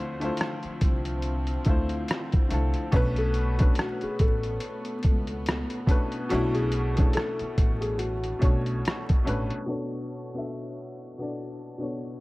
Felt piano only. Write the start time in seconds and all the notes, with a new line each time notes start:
2.94 B4
3.18 A4
3.79 F#4
4.03 G#4
4.21 A4
6.31 F#4
6.55 G#4
7.15 A4
7.81 G#4
7.98 F#4